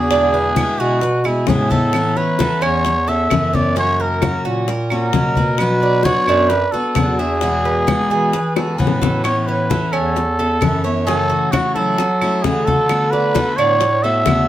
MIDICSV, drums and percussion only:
0, 0, Header, 1, 2, 480
1, 0, Start_track
1, 0, Key_signature, 3, "major"
1, 0, Tempo, 456969
1, 118, Time_signature, 4, 2, 24, 8
1, 15212, End_track
2, 0, Start_track
2, 0, Title_t, "Drums"
2, 112, Note_on_c, 9, 60, 67
2, 119, Note_on_c, 9, 63, 35
2, 217, Note_off_c, 9, 60, 0
2, 224, Note_off_c, 9, 63, 0
2, 360, Note_on_c, 9, 63, 34
2, 465, Note_off_c, 9, 63, 0
2, 590, Note_on_c, 9, 60, 53
2, 595, Note_on_c, 9, 63, 90
2, 602, Note_on_c, 9, 75, 62
2, 695, Note_off_c, 9, 60, 0
2, 700, Note_off_c, 9, 63, 0
2, 707, Note_off_c, 9, 75, 0
2, 822, Note_on_c, 9, 60, 29
2, 841, Note_on_c, 9, 63, 32
2, 927, Note_off_c, 9, 60, 0
2, 946, Note_off_c, 9, 63, 0
2, 1066, Note_on_c, 9, 60, 61
2, 1076, Note_on_c, 9, 63, 35
2, 1171, Note_off_c, 9, 60, 0
2, 1181, Note_off_c, 9, 63, 0
2, 1303, Note_on_c, 9, 60, 35
2, 1314, Note_on_c, 9, 75, 70
2, 1322, Note_on_c, 9, 63, 33
2, 1408, Note_off_c, 9, 60, 0
2, 1419, Note_off_c, 9, 75, 0
2, 1427, Note_off_c, 9, 63, 0
2, 1542, Note_on_c, 9, 60, 67
2, 1542, Note_on_c, 9, 61, 77
2, 1562, Note_on_c, 9, 63, 77
2, 1647, Note_off_c, 9, 60, 0
2, 1647, Note_off_c, 9, 61, 0
2, 1667, Note_off_c, 9, 63, 0
2, 1786, Note_on_c, 9, 60, 33
2, 1803, Note_on_c, 9, 63, 81
2, 1891, Note_off_c, 9, 60, 0
2, 1908, Note_off_c, 9, 63, 0
2, 2027, Note_on_c, 9, 60, 59
2, 2037, Note_on_c, 9, 75, 68
2, 2047, Note_on_c, 9, 63, 33
2, 2132, Note_off_c, 9, 60, 0
2, 2142, Note_off_c, 9, 75, 0
2, 2152, Note_off_c, 9, 63, 0
2, 2272, Note_on_c, 9, 60, 32
2, 2285, Note_on_c, 9, 63, 32
2, 2377, Note_off_c, 9, 60, 0
2, 2390, Note_off_c, 9, 63, 0
2, 2510, Note_on_c, 9, 60, 58
2, 2524, Note_on_c, 9, 63, 82
2, 2615, Note_off_c, 9, 60, 0
2, 2629, Note_off_c, 9, 63, 0
2, 2744, Note_on_c, 9, 60, 29
2, 2756, Note_on_c, 9, 75, 65
2, 2758, Note_on_c, 9, 63, 34
2, 2849, Note_off_c, 9, 60, 0
2, 2861, Note_off_c, 9, 75, 0
2, 2863, Note_off_c, 9, 63, 0
2, 2990, Note_on_c, 9, 60, 58
2, 3002, Note_on_c, 9, 63, 35
2, 3095, Note_off_c, 9, 60, 0
2, 3107, Note_off_c, 9, 63, 0
2, 3240, Note_on_c, 9, 60, 35
2, 3242, Note_on_c, 9, 63, 33
2, 3346, Note_off_c, 9, 60, 0
2, 3347, Note_off_c, 9, 63, 0
2, 3470, Note_on_c, 9, 75, 64
2, 3480, Note_on_c, 9, 60, 59
2, 3480, Note_on_c, 9, 61, 78
2, 3488, Note_on_c, 9, 63, 67
2, 3575, Note_off_c, 9, 75, 0
2, 3585, Note_off_c, 9, 60, 0
2, 3585, Note_off_c, 9, 61, 0
2, 3593, Note_off_c, 9, 63, 0
2, 3726, Note_on_c, 9, 63, 65
2, 3831, Note_off_c, 9, 63, 0
2, 3958, Note_on_c, 9, 60, 63
2, 3965, Note_on_c, 9, 63, 33
2, 4063, Note_off_c, 9, 60, 0
2, 4070, Note_off_c, 9, 63, 0
2, 4207, Note_on_c, 9, 63, 36
2, 4312, Note_off_c, 9, 63, 0
2, 4429, Note_on_c, 9, 75, 62
2, 4433, Note_on_c, 9, 60, 54
2, 4440, Note_on_c, 9, 63, 90
2, 4534, Note_off_c, 9, 75, 0
2, 4538, Note_off_c, 9, 60, 0
2, 4545, Note_off_c, 9, 63, 0
2, 4679, Note_on_c, 9, 60, 31
2, 4685, Note_on_c, 9, 63, 32
2, 4784, Note_off_c, 9, 60, 0
2, 4790, Note_off_c, 9, 63, 0
2, 4915, Note_on_c, 9, 60, 61
2, 4926, Note_on_c, 9, 63, 31
2, 5020, Note_off_c, 9, 60, 0
2, 5032, Note_off_c, 9, 63, 0
2, 5150, Note_on_c, 9, 60, 38
2, 5151, Note_on_c, 9, 75, 71
2, 5164, Note_on_c, 9, 63, 35
2, 5255, Note_off_c, 9, 60, 0
2, 5256, Note_off_c, 9, 75, 0
2, 5269, Note_off_c, 9, 63, 0
2, 5390, Note_on_c, 9, 60, 65
2, 5390, Note_on_c, 9, 61, 74
2, 5399, Note_on_c, 9, 63, 76
2, 5495, Note_off_c, 9, 60, 0
2, 5495, Note_off_c, 9, 61, 0
2, 5504, Note_off_c, 9, 63, 0
2, 5624, Note_on_c, 9, 60, 31
2, 5638, Note_on_c, 9, 63, 80
2, 5729, Note_off_c, 9, 60, 0
2, 5743, Note_off_c, 9, 63, 0
2, 5862, Note_on_c, 9, 60, 66
2, 5870, Note_on_c, 9, 75, 63
2, 5872, Note_on_c, 9, 63, 33
2, 5967, Note_off_c, 9, 60, 0
2, 5976, Note_off_c, 9, 75, 0
2, 5977, Note_off_c, 9, 63, 0
2, 6103, Note_on_c, 9, 60, 33
2, 6115, Note_on_c, 9, 63, 38
2, 6208, Note_off_c, 9, 60, 0
2, 6220, Note_off_c, 9, 63, 0
2, 6334, Note_on_c, 9, 60, 52
2, 6358, Note_on_c, 9, 63, 80
2, 6439, Note_off_c, 9, 60, 0
2, 6463, Note_off_c, 9, 63, 0
2, 6582, Note_on_c, 9, 60, 27
2, 6591, Note_on_c, 9, 75, 62
2, 6598, Note_on_c, 9, 63, 35
2, 6687, Note_off_c, 9, 60, 0
2, 6696, Note_off_c, 9, 75, 0
2, 6703, Note_off_c, 9, 63, 0
2, 6826, Note_on_c, 9, 60, 61
2, 6833, Note_on_c, 9, 63, 35
2, 6931, Note_off_c, 9, 60, 0
2, 6938, Note_off_c, 9, 63, 0
2, 7062, Note_on_c, 9, 60, 33
2, 7077, Note_on_c, 9, 63, 36
2, 7167, Note_off_c, 9, 60, 0
2, 7182, Note_off_c, 9, 63, 0
2, 7302, Note_on_c, 9, 60, 66
2, 7302, Note_on_c, 9, 61, 73
2, 7312, Note_on_c, 9, 75, 66
2, 7314, Note_on_c, 9, 63, 73
2, 7408, Note_off_c, 9, 60, 0
2, 7408, Note_off_c, 9, 61, 0
2, 7417, Note_off_c, 9, 75, 0
2, 7419, Note_off_c, 9, 63, 0
2, 7786, Note_on_c, 9, 60, 66
2, 7794, Note_on_c, 9, 63, 35
2, 7891, Note_off_c, 9, 60, 0
2, 7899, Note_off_c, 9, 63, 0
2, 8038, Note_on_c, 9, 63, 34
2, 8144, Note_off_c, 9, 63, 0
2, 8275, Note_on_c, 9, 75, 59
2, 8276, Note_on_c, 9, 60, 57
2, 8278, Note_on_c, 9, 63, 82
2, 8380, Note_off_c, 9, 75, 0
2, 8381, Note_off_c, 9, 60, 0
2, 8383, Note_off_c, 9, 63, 0
2, 8511, Note_on_c, 9, 60, 29
2, 8516, Note_on_c, 9, 63, 35
2, 8616, Note_off_c, 9, 60, 0
2, 8621, Note_off_c, 9, 63, 0
2, 8754, Note_on_c, 9, 60, 58
2, 8761, Note_on_c, 9, 63, 32
2, 8859, Note_off_c, 9, 60, 0
2, 8866, Note_off_c, 9, 63, 0
2, 8995, Note_on_c, 9, 75, 68
2, 8997, Note_on_c, 9, 60, 103
2, 9005, Note_on_c, 9, 63, 35
2, 9100, Note_off_c, 9, 75, 0
2, 9102, Note_off_c, 9, 60, 0
2, 9110, Note_off_c, 9, 63, 0
2, 9244, Note_on_c, 9, 63, 73
2, 9318, Note_on_c, 9, 61, 90
2, 9350, Note_off_c, 9, 63, 0
2, 9423, Note_off_c, 9, 61, 0
2, 9478, Note_on_c, 9, 63, 74
2, 9484, Note_on_c, 9, 61, 81
2, 9584, Note_off_c, 9, 63, 0
2, 9589, Note_off_c, 9, 61, 0
2, 9708, Note_on_c, 9, 75, 66
2, 9716, Note_on_c, 9, 60, 61
2, 9726, Note_on_c, 9, 63, 31
2, 9813, Note_off_c, 9, 75, 0
2, 9821, Note_off_c, 9, 60, 0
2, 9831, Note_off_c, 9, 63, 0
2, 9955, Note_on_c, 9, 60, 35
2, 9962, Note_on_c, 9, 63, 39
2, 10060, Note_off_c, 9, 60, 0
2, 10067, Note_off_c, 9, 63, 0
2, 10197, Note_on_c, 9, 60, 58
2, 10198, Note_on_c, 9, 63, 84
2, 10302, Note_off_c, 9, 60, 0
2, 10303, Note_off_c, 9, 63, 0
2, 10430, Note_on_c, 9, 75, 60
2, 10437, Note_on_c, 9, 63, 37
2, 10441, Note_on_c, 9, 60, 28
2, 10535, Note_off_c, 9, 75, 0
2, 10542, Note_off_c, 9, 63, 0
2, 10546, Note_off_c, 9, 60, 0
2, 10679, Note_on_c, 9, 60, 60
2, 10689, Note_on_c, 9, 63, 35
2, 10784, Note_off_c, 9, 60, 0
2, 10794, Note_off_c, 9, 63, 0
2, 10924, Note_on_c, 9, 60, 36
2, 10927, Note_on_c, 9, 63, 32
2, 11029, Note_off_c, 9, 60, 0
2, 11032, Note_off_c, 9, 63, 0
2, 11152, Note_on_c, 9, 75, 67
2, 11155, Note_on_c, 9, 60, 61
2, 11155, Note_on_c, 9, 61, 79
2, 11159, Note_on_c, 9, 63, 78
2, 11257, Note_off_c, 9, 75, 0
2, 11260, Note_off_c, 9, 60, 0
2, 11260, Note_off_c, 9, 61, 0
2, 11264, Note_off_c, 9, 63, 0
2, 11643, Note_on_c, 9, 60, 65
2, 11644, Note_on_c, 9, 63, 35
2, 11748, Note_off_c, 9, 60, 0
2, 11749, Note_off_c, 9, 63, 0
2, 11886, Note_on_c, 9, 63, 37
2, 11991, Note_off_c, 9, 63, 0
2, 12111, Note_on_c, 9, 75, 66
2, 12112, Note_on_c, 9, 60, 53
2, 12117, Note_on_c, 9, 63, 85
2, 12216, Note_off_c, 9, 75, 0
2, 12217, Note_off_c, 9, 60, 0
2, 12222, Note_off_c, 9, 63, 0
2, 12355, Note_on_c, 9, 63, 35
2, 12360, Note_on_c, 9, 60, 33
2, 12460, Note_off_c, 9, 63, 0
2, 12465, Note_off_c, 9, 60, 0
2, 12589, Note_on_c, 9, 60, 68
2, 12594, Note_on_c, 9, 63, 33
2, 12694, Note_off_c, 9, 60, 0
2, 12700, Note_off_c, 9, 63, 0
2, 12830, Note_on_c, 9, 75, 70
2, 12835, Note_on_c, 9, 60, 36
2, 12835, Note_on_c, 9, 63, 38
2, 12935, Note_off_c, 9, 75, 0
2, 12940, Note_off_c, 9, 60, 0
2, 12940, Note_off_c, 9, 63, 0
2, 13070, Note_on_c, 9, 60, 67
2, 13070, Note_on_c, 9, 61, 83
2, 13075, Note_on_c, 9, 63, 77
2, 13175, Note_off_c, 9, 60, 0
2, 13175, Note_off_c, 9, 61, 0
2, 13180, Note_off_c, 9, 63, 0
2, 13307, Note_on_c, 9, 60, 34
2, 13321, Note_on_c, 9, 63, 82
2, 13412, Note_off_c, 9, 60, 0
2, 13426, Note_off_c, 9, 63, 0
2, 13544, Note_on_c, 9, 60, 68
2, 13550, Note_on_c, 9, 75, 68
2, 13557, Note_on_c, 9, 63, 34
2, 13649, Note_off_c, 9, 60, 0
2, 13655, Note_off_c, 9, 75, 0
2, 13662, Note_off_c, 9, 63, 0
2, 13788, Note_on_c, 9, 60, 35
2, 13799, Note_on_c, 9, 63, 38
2, 13893, Note_off_c, 9, 60, 0
2, 13904, Note_off_c, 9, 63, 0
2, 14024, Note_on_c, 9, 60, 60
2, 14031, Note_on_c, 9, 63, 85
2, 14129, Note_off_c, 9, 60, 0
2, 14136, Note_off_c, 9, 63, 0
2, 14266, Note_on_c, 9, 60, 33
2, 14271, Note_on_c, 9, 63, 36
2, 14273, Note_on_c, 9, 75, 70
2, 14371, Note_off_c, 9, 60, 0
2, 14376, Note_off_c, 9, 63, 0
2, 14378, Note_off_c, 9, 75, 0
2, 14503, Note_on_c, 9, 60, 68
2, 14515, Note_on_c, 9, 63, 36
2, 14608, Note_off_c, 9, 60, 0
2, 14620, Note_off_c, 9, 63, 0
2, 14749, Note_on_c, 9, 60, 35
2, 14753, Note_on_c, 9, 63, 33
2, 14854, Note_off_c, 9, 60, 0
2, 14858, Note_off_c, 9, 63, 0
2, 14976, Note_on_c, 9, 60, 68
2, 14976, Note_on_c, 9, 61, 73
2, 14991, Note_on_c, 9, 63, 72
2, 14992, Note_on_c, 9, 75, 66
2, 15081, Note_off_c, 9, 60, 0
2, 15081, Note_off_c, 9, 61, 0
2, 15096, Note_off_c, 9, 63, 0
2, 15097, Note_off_c, 9, 75, 0
2, 15212, End_track
0, 0, End_of_file